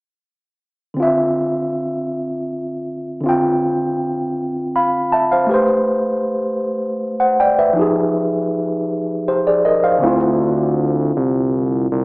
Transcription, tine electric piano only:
0.94 D3 C4
1.00 F4 E5
3.21 D3 C4
3.26 F4 G5
4.76 F5 B5
5.12 E5 A5
5.32 C5 F5
5.47 A3 G4
5.51 B4 C5
7.20 C5 F#5
7.40 D5 G5
7.59 B4 E5
7.73 F3 D#4
7.79 G4 G#4
9.28 G4 C5
9.47 G#4 D5
9.65 A#4 D#5
9.84 C5 F5
9.98 D3 C4
10.04 E4 F4

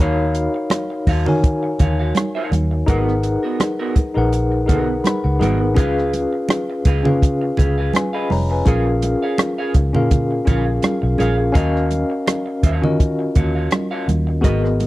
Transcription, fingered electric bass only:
0.00 D#2
1.07 D#2
1.27 D#3
1.80 D#2
2.51 D#2
2.88 G#1
3.96 muted fingered electric bass stroke
4.17 A#1
4.69 B1
5.25 C#2
5.41 G#1
5.77 C#2
6.86 C#2
7.05 C#3
7.59 C#2
8.30 F1
8.67 A#1
9.75 C#2
9.95 A#2
10.48 A#1
11.03 B1
11.20 A#1
11.55 D#2
12.63 D#2
12.83 D#3
13.36 D#2
14.08 D#2
14.44 G#1

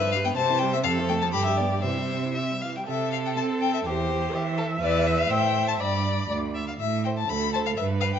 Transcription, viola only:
0.01 F3
0.14 G3
0.25 B3
0.37 C3
0.50 E3
0.61 G3
0.74 C4
0.86 C3
0.99 F3
1.10 A3
1.23 F3
1.36 D3
1.48 G3
1.60 B3
1.72 G3
1.85 E3
1.98 G3
2.11 C4
2.25 E4
2.37 C4
2.51 G3
2.63 E3
2.76 G3
2.90 A4
3.87 G4
4.34 E5
5.81 D5
7.29 A4
7.78 B4

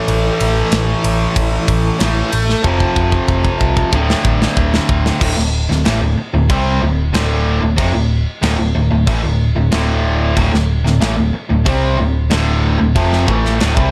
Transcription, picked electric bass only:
0.08 A1
0.41 A1
0.72 A1
1.04 A1
1.36 A1
1.68 A1
2.01 A1
2.33 A1
2.64 F1
2.97 F1
3.29 F1
3.61 C2
3.93 D1
4.25 A1
4.57 D1
4.89 D1
5.21 D1
5.37 D1
5.70 D1
5.86 A1
6.02 D1
6.17 muted picked electric bass stroke
6.34 D1
6.50 C2
6.82 D1
7.13 D1
7.62 D1
7.78 F1
7.95 D1
8.43 D1
8.59 D1
8.75 D1
8.91 D1
9.07 A1
9.24 D1
9.56 D1
9.72 D1
10.37 D1
10.53 D1
10.85 D1
11.01 A1
11.18 D1
11.34 muted picked electric bass stroke
11.51 D1
11.66 C2
12.00 D1
12.32 D1
12.81 D1
12.96 F1
13.28 A1
13.62 D1
13.77 C2

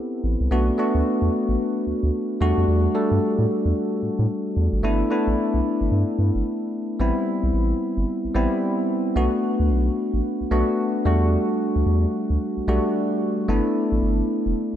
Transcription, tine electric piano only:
Already playing: B3 C4 E4 G4 A4
0.51 A3 B3 D4 F#4
0.78 A3 B3 D4 F#4
2.41 G3 A3 D4 F#4
2.94 G3 A3 D4 A4
4.83 A3 B3 D4 E4
5.10 A3 B3 D4 E4
7.00 G3 B3 C4 E4
8.35 G3 B3 C4 E4
9.16 A3 B3 D4 F#4
10.51 A3 B3 D4 F#4
11.05 G3 A3 D4 F#4
12.68 G3 A3 D4 F#4
13.49 A3 B3 D4 E4

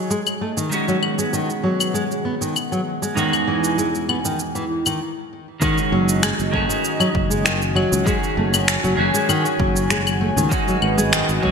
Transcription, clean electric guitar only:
Already playing: D#3 C#4 F#4 G#4
0.69 D#3 G#3 C#4
0.74 F#4
3.14 E2 G#3 C#4 D#4
3.19 F#4
5.60 D#3 G#3 C#4
5.64 F#4
6.51 D#3 C#4 G#4
6.55 F#4
8.04 D#3 C#4 F#4 G#4
8.96 D#3 C#4 F#4 G#4
10.49 D#3 G#3 C#4 F#4
11.41 D#3 G#3 C#4
11.45 F#4

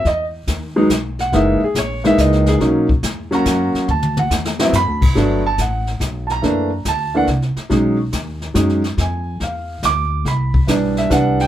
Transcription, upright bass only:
0.05 E2
0.47 D#2
0.90 B1
1.32 F#1
1.61 muted upright bass stroke
1.75 A#1
2.18 C#2
2.60 B1
3.03 E2
3.45 F#2
3.74 muted upright bass stroke
3.88 D2
4.30 E2
4.72 F#2
4.87 D2
5.01 C2
5.16 G1
5.58 A1
6.00 B1
6.43 F#2
6.85 D2
7.27 C2
7.56 muted upright bass stroke
7.70 B1
8.13 D#2
8.55 F#2
8.97 F2
9.40 E2
9.83 D2
10.25 C2
10.67 B1
11.10 C2

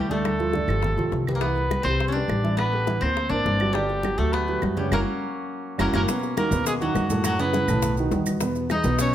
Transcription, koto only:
Already playing: G3 A3
0.11 A3
1.35 A#3
1.41 B3
1.83 C4
2.08 C#4
2.12 D4
2.57 B3
3.01 C4
3.29 D4
3.73 G3
4.18 A3
4.33 B3
4.77 G3
4.93 F#3 A#3 C#4
5.80 F#3 A#3 C#4
5.94 F#3 A#3 C#4
6.37 A#3
6.66 G#3
6.82 F#3
7.25 F#3
7.39 B3
8.71 D#4
9.00 C#4

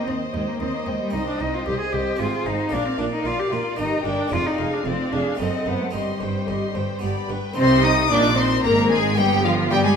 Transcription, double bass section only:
0.08 D#2
0.34 D#2
0.61 D#2
0.87 D#2
1.13 C2
1.40 C2
1.67 C2
1.93 C2
2.20 G#1
2.46 G#1
2.73 A#1
2.99 A#1
3.26 A#1
3.52 A#1
3.79 G1
4.06 G1
4.32 F1
4.59 F1
4.86 F1
5.13 F1
5.40 F#1
5.67 F#1
5.94 G1
6.21 G1
6.48 G1
6.76 G1
7.03 G1
7.30 G1
7.57 C2
8.10 A#1
8.64 G#1
9.18 G1
9.71 G2

